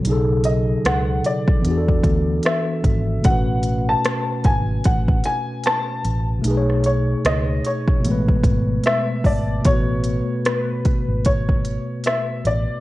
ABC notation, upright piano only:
X:1
M:4/4
L:1/16
Q:"Swing 16ths" 1/4=75
K:A
V:1 name="Upright piano"
z2 ^d2 f2 =d6 e4 | f3 a3 g2 f2 g2 a3 z | z2 c2 ^d2 c6 e2 =d2 | c4 B4 c4 e2 d2 |]